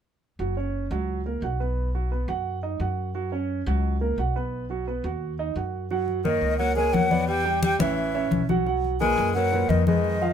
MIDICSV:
0, 0, Header, 1, 6, 480
1, 0, Start_track
1, 0, Key_signature, 6, "major"
1, 0, Tempo, 344432
1, 552, Time_signature, 4, 2, 24, 8
1, 14399, End_track
2, 0, Start_track
2, 0, Title_t, "Flute"
2, 0, Program_c, 0, 73
2, 8710, Note_on_c, 0, 75, 83
2, 9155, Note_off_c, 0, 75, 0
2, 9172, Note_on_c, 0, 78, 91
2, 9402, Note_off_c, 0, 78, 0
2, 9427, Note_on_c, 0, 80, 85
2, 9661, Note_on_c, 0, 78, 94
2, 9682, Note_off_c, 0, 80, 0
2, 10137, Note_off_c, 0, 78, 0
2, 10146, Note_on_c, 0, 79, 100
2, 10593, Note_off_c, 0, 79, 0
2, 10645, Note_on_c, 0, 79, 90
2, 10860, Note_off_c, 0, 79, 0
2, 10881, Note_on_c, 0, 76, 78
2, 11780, Note_off_c, 0, 76, 0
2, 12550, Note_on_c, 0, 80, 93
2, 12997, Note_off_c, 0, 80, 0
2, 13016, Note_on_c, 0, 78, 86
2, 13507, Note_on_c, 0, 75, 82
2, 13528, Note_off_c, 0, 78, 0
2, 13749, Note_off_c, 0, 75, 0
2, 13757, Note_on_c, 0, 75, 68
2, 14399, Note_off_c, 0, 75, 0
2, 14399, End_track
3, 0, Start_track
3, 0, Title_t, "Grand piano"
3, 0, Program_c, 1, 0
3, 552, Note_on_c, 1, 54, 66
3, 555, Note_on_c, 1, 66, 66
3, 749, Note_off_c, 1, 54, 0
3, 750, Note_off_c, 1, 66, 0
3, 793, Note_on_c, 1, 61, 57
3, 795, Note_on_c, 1, 73, 61
3, 1186, Note_off_c, 1, 61, 0
3, 1187, Note_off_c, 1, 73, 0
3, 1275, Note_on_c, 1, 54, 76
3, 1276, Note_on_c, 1, 66, 74
3, 1667, Note_off_c, 1, 54, 0
3, 1668, Note_off_c, 1, 66, 0
3, 1754, Note_on_c, 1, 58, 61
3, 1761, Note_on_c, 1, 70, 61
3, 1950, Note_off_c, 1, 58, 0
3, 1954, Note_off_c, 1, 70, 0
3, 1994, Note_on_c, 1, 66, 62
3, 1999, Note_on_c, 1, 78, 60
3, 2190, Note_off_c, 1, 66, 0
3, 2193, Note_off_c, 1, 78, 0
3, 2227, Note_on_c, 1, 59, 58
3, 2235, Note_on_c, 1, 71, 63
3, 2622, Note_off_c, 1, 59, 0
3, 2627, Note_off_c, 1, 71, 0
3, 2712, Note_on_c, 1, 54, 64
3, 2714, Note_on_c, 1, 66, 67
3, 2908, Note_off_c, 1, 54, 0
3, 2910, Note_off_c, 1, 66, 0
3, 2945, Note_on_c, 1, 59, 66
3, 2951, Note_on_c, 1, 71, 62
3, 3144, Note_off_c, 1, 59, 0
3, 3148, Note_off_c, 1, 71, 0
3, 3183, Note_on_c, 1, 66, 59
3, 3188, Note_on_c, 1, 78, 69
3, 3579, Note_off_c, 1, 66, 0
3, 3583, Note_off_c, 1, 78, 0
3, 3664, Note_on_c, 1, 63, 61
3, 3665, Note_on_c, 1, 75, 64
3, 3863, Note_off_c, 1, 63, 0
3, 3864, Note_off_c, 1, 75, 0
3, 3910, Note_on_c, 1, 66, 59
3, 3915, Note_on_c, 1, 78, 65
3, 4303, Note_off_c, 1, 66, 0
3, 4306, Note_off_c, 1, 78, 0
3, 4386, Note_on_c, 1, 54, 67
3, 4387, Note_on_c, 1, 66, 74
3, 4584, Note_off_c, 1, 54, 0
3, 4585, Note_off_c, 1, 66, 0
3, 4628, Note_on_c, 1, 61, 71
3, 4633, Note_on_c, 1, 73, 64
3, 5022, Note_off_c, 1, 61, 0
3, 5025, Note_off_c, 1, 73, 0
3, 5110, Note_on_c, 1, 54, 71
3, 5116, Note_on_c, 1, 66, 84
3, 5503, Note_off_c, 1, 54, 0
3, 5507, Note_off_c, 1, 66, 0
3, 5590, Note_on_c, 1, 58, 64
3, 5593, Note_on_c, 1, 70, 65
3, 5786, Note_off_c, 1, 58, 0
3, 5788, Note_off_c, 1, 70, 0
3, 5839, Note_on_c, 1, 66, 59
3, 5844, Note_on_c, 1, 78, 65
3, 6031, Note_off_c, 1, 66, 0
3, 6035, Note_off_c, 1, 78, 0
3, 6071, Note_on_c, 1, 59, 67
3, 6077, Note_on_c, 1, 71, 68
3, 6463, Note_off_c, 1, 59, 0
3, 6467, Note_off_c, 1, 71, 0
3, 6547, Note_on_c, 1, 54, 69
3, 6556, Note_on_c, 1, 66, 74
3, 6744, Note_off_c, 1, 54, 0
3, 6749, Note_off_c, 1, 66, 0
3, 6792, Note_on_c, 1, 59, 66
3, 6797, Note_on_c, 1, 71, 62
3, 6987, Note_off_c, 1, 59, 0
3, 6990, Note_off_c, 1, 71, 0
3, 7031, Note_on_c, 1, 66, 69
3, 7036, Note_on_c, 1, 78, 59
3, 7423, Note_off_c, 1, 66, 0
3, 7426, Note_off_c, 1, 78, 0
3, 7511, Note_on_c, 1, 63, 72
3, 7517, Note_on_c, 1, 75, 62
3, 7707, Note_off_c, 1, 63, 0
3, 7710, Note_off_c, 1, 75, 0
3, 7751, Note_on_c, 1, 66, 58
3, 7754, Note_on_c, 1, 78, 56
3, 8143, Note_off_c, 1, 66, 0
3, 8145, Note_off_c, 1, 78, 0
3, 8232, Note_on_c, 1, 54, 73
3, 8236, Note_on_c, 1, 66, 71
3, 8241, Note_on_c, 1, 78, 77
3, 8624, Note_off_c, 1, 54, 0
3, 8626, Note_off_c, 1, 66, 0
3, 8629, Note_off_c, 1, 78, 0
3, 8706, Note_on_c, 1, 58, 59
3, 8708, Note_on_c, 1, 70, 70
3, 8712, Note_on_c, 1, 73, 64
3, 9100, Note_off_c, 1, 58, 0
3, 9101, Note_off_c, 1, 70, 0
3, 9104, Note_off_c, 1, 73, 0
3, 9187, Note_on_c, 1, 58, 67
3, 9188, Note_on_c, 1, 70, 67
3, 9192, Note_on_c, 1, 73, 55
3, 9384, Note_off_c, 1, 58, 0
3, 9385, Note_off_c, 1, 70, 0
3, 9387, Note_off_c, 1, 73, 0
3, 9428, Note_on_c, 1, 58, 66
3, 9430, Note_on_c, 1, 70, 69
3, 9435, Note_on_c, 1, 73, 71
3, 9821, Note_off_c, 1, 58, 0
3, 9823, Note_off_c, 1, 70, 0
3, 9825, Note_off_c, 1, 73, 0
3, 9902, Note_on_c, 1, 59, 73
3, 9907, Note_on_c, 1, 71, 70
3, 9909, Note_on_c, 1, 74, 75
3, 10298, Note_off_c, 1, 59, 0
3, 10301, Note_off_c, 1, 71, 0
3, 10302, Note_off_c, 1, 74, 0
3, 10383, Note_on_c, 1, 55, 78
3, 10385, Note_on_c, 1, 67, 70
3, 10390, Note_on_c, 1, 79, 82
3, 10779, Note_off_c, 1, 55, 0
3, 10780, Note_off_c, 1, 67, 0
3, 10783, Note_off_c, 1, 79, 0
3, 10862, Note_on_c, 1, 61, 66
3, 10866, Note_on_c, 1, 73, 76
3, 10873, Note_on_c, 1, 76, 65
3, 11258, Note_off_c, 1, 61, 0
3, 11261, Note_off_c, 1, 73, 0
3, 11265, Note_off_c, 1, 76, 0
3, 11349, Note_on_c, 1, 61, 62
3, 11353, Note_on_c, 1, 73, 75
3, 11357, Note_on_c, 1, 76, 70
3, 11743, Note_off_c, 1, 61, 0
3, 11745, Note_off_c, 1, 73, 0
3, 11748, Note_off_c, 1, 76, 0
3, 11833, Note_on_c, 1, 54, 75
3, 11837, Note_on_c, 1, 66, 78
3, 11841, Note_on_c, 1, 78, 79
3, 12028, Note_off_c, 1, 54, 0
3, 12031, Note_off_c, 1, 66, 0
3, 12033, Note_off_c, 1, 78, 0
3, 12070, Note_on_c, 1, 54, 67
3, 12074, Note_on_c, 1, 66, 66
3, 12081, Note_on_c, 1, 78, 69
3, 12464, Note_off_c, 1, 54, 0
3, 12466, Note_off_c, 1, 66, 0
3, 12470, Note_off_c, 1, 78, 0
3, 12550, Note_on_c, 1, 46, 73
3, 12552, Note_on_c, 1, 70, 73
3, 12559, Note_on_c, 1, 71, 69
3, 12944, Note_off_c, 1, 46, 0
3, 12945, Note_off_c, 1, 70, 0
3, 12949, Note_off_c, 1, 71, 0
3, 13026, Note_on_c, 1, 58, 65
3, 13034, Note_on_c, 1, 70, 63
3, 13039, Note_on_c, 1, 71, 59
3, 13225, Note_off_c, 1, 58, 0
3, 13230, Note_off_c, 1, 70, 0
3, 13232, Note_off_c, 1, 71, 0
3, 13270, Note_on_c, 1, 46, 72
3, 13276, Note_on_c, 1, 70, 72
3, 13279, Note_on_c, 1, 71, 65
3, 13665, Note_off_c, 1, 46, 0
3, 13668, Note_off_c, 1, 70, 0
3, 13670, Note_off_c, 1, 71, 0
3, 13758, Note_on_c, 1, 56, 66
3, 13764, Note_on_c, 1, 68, 66
3, 13766, Note_on_c, 1, 71, 67
3, 14149, Note_off_c, 1, 56, 0
3, 14153, Note_off_c, 1, 68, 0
3, 14154, Note_off_c, 1, 71, 0
3, 14234, Note_on_c, 1, 53, 72
3, 14235, Note_on_c, 1, 65, 65
3, 14241, Note_on_c, 1, 77, 74
3, 14399, Note_off_c, 1, 53, 0
3, 14399, Note_off_c, 1, 65, 0
3, 14399, Note_off_c, 1, 77, 0
3, 14399, End_track
4, 0, Start_track
4, 0, Title_t, "Tenor saxophone"
4, 0, Program_c, 2, 66
4, 8697, Note_on_c, 2, 51, 75
4, 9148, Note_off_c, 2, 51, 0
4, 9187, Note_on_c, 2, 54, 76
4, 9407, Note_off_c, 2, 54, 0
4, 9415, Note_on_c, 2, 56, 76
4, 9663, Note_on_c, 2, 54, 77
4, 9684, Note_off_c, 2, 56, 0
4, 10132, Note_off_c, 2, 54, 0
4, 10140, Note_on_c, 2, 55, 85
4, 10590, Note_off_c, 2, 55, 0
4, 10638, Note_on_c, 2, 55, 80
4, 10857, Note_off_c, 2, 55, 0
4, 10875, Note_on_c, 2, 52, 78
4, 11777, Note_off_c, 2, 52, 0
4, 12553, Note_on_c, 2, 56, 85
4, 12999, Note_off_c, 2, 56, 0
4, 13034, Note_on_c, 2, 54, 71
4, 13501, Note_on_c, 2, 51, 62
4, 13522, Note_off_c, 2, 54, 0
4, 13740, Note_off_c, 2, 51, 0
4, 13749, Note_on_c, 2, 51, 70
4, 14399, Note_off_c, 2, 51, 0
4, 14399, End_track
5, 0, Start_track
5, 0, Title_t, "Upright bass"
5, 0, Program_c, 3, 32
5, 544, Note_on_c, 3, 30, 74
5, 1217, Note_off_c, 3, 30, 0
5, 1263, Note_on_c, 3, 37, 82
5, 1936, Note_off_c, 3, 37, 0
5, 1978, Note_on_c, 3, 35, 79
5, 3104, Note_off_c, 3, 35, 0
5, 3177, Note_on_c, 3, 42, 81
5, 3852, Note_off_c, 3, 42, 0
5, 3897, Note_on_c, 3, 42, 82
5, 5023, Note_off_c, 3, 42, 0
5, 5106, Note_on_c, 3, 37, 89
5, 5776, Note_off_c, 3, 37, 0
5, 5820, Note_on_c, 3, 35, 76
5, 6944, Note_off_c, 3, 35, 0
5, 7022, Note_on_c, 3, 39, 81
5, 7694, Note_off_c, 3, 39, 0
5, 7741, Note_on_c, 3, 42, 76
5, 8864, Note_off_c, 3, 42, 0
5, 8937, Note_on_c, 3, 37, 75
5, 9611, Note_off_c, 3, 37, 0
5, 9661, Note_on_c, 3, 40, 85
5, 10785, Note_off_c, 3, 40, 0
5, 10858, Note_on_c, 3, 33, 82
5, 11533, Note_off_c, 3, 33, 0
5, 11579, Note_on_c, 3, 35, 77
5, 12706, Note_off_c, 3, 35, 0
5, 12787, Note_on_c, 3, 42, 92
5, 13459, Note_off_c, 3, 42, 0
5, 13503, Note_on_c, 3, 41, 81
5, 14399, Note_off_c, 3, 41, 0
5, 14399, End_track
6, 0, Start_track
6, 0, Title_t, "Drums"
6, 8228, Note_on_c, 9, 63, 28
6, 8368, Note_off_c, 9, 63, 0
6, 8469, Note_on_c, 9, 63, 30
6, 8608, Note_off_c, 9, 63, 0
6, 8712, Note_on_c, 9, 63, 52
6, 8851, Note_off_c, 9, 63, 0
6, 8949, Note_on_c, 9, 63, 28
6, 9088, Note_off_c, 9, 63, 0
6, 9190, Note_on_c, 9, 63, 31
6, 9329, Note_off_c, 9, 63, 0
6, 9432, Note_on_c, 9, 63, 31
6, 9572, Note_off_c, 9, 63, 0
6, 9675, Note_on_c, 9, 63, 74
6, 9814, Note_off_c, 9, 63, 0
6, 9911, Note_on_c, 9, 63, 61
6, 10050, Note_off_c, 9, 63, 0
6, 10153, Note_on_c, 9, 63, 31
6, 10293, Note_off_c, 9, 63, 0
6, 10393, Note_on_c, 9, 63, 33
6, 10532, Note_off_c, 9, 63, 0
6, 10627, Note_on_c, 9, 63, 86
6, 10767, Note_off_c, 9, 63, 0
6, 10870, Note_on_c, 9, 63, 94
6, 11009, Note_off_c, 9, 63, 0
6, 11117, Note_on_c, 9, 63, 34
6, 11257, Note_off_c, 9, 63, 0
6, 11357, Note_on_c, 9, 63, 31
6, 11496, Note_off_c, 9, 63, 0
6, 11588, Note_on_c, 9, 63, 75
6, 11727, Note_off_c, 9, 63, 0
6, 11833, Note_on_c, 9, 63, 70
6, 11972, Note_off_c, 9, 63, 0
6, 12075, Note_on_c, 9, 63, 28
6, 12215, Note_off_c, 9, 63, 0
6, 12326, Note_on_c, 9, 63, 29
6, 12465, Note_off_c, 9, 63, 0
6, 12566, Note_on_c, 9, 63, 52
6, 12706, Note_off_c, 9, 63, 0
6, 12801, Note_on_c, 9, 63, 32
6, 12941, Note_off_c, 9, 63, 0
6, 13043, Note_on_c, 9, 63, 31
6, 13182, Note_off_c, 9, 63, 0
6, 13286, Note_on_c, 9, 63, 32
6, 13425, Note_off_c, 9, 63, 0
6, 13519, Note_on_c, 9, 63, 82
6, 13658, Note_off_c, 9, 63, 0
6, 13752, Note_on_c, 9, 63, 69
6, 13891, Note_off_c, 9, 63, 0
6, 13995, Note_on_c, 9, 63, 31
6, 14134, Note_off_c, 9, 63, 0
6, 14238, Note_on_c, 9, 63, 32
6, 14377, Note_off_c, 9, 63, 0
6, 14399, End_track
0, 0, End_of_file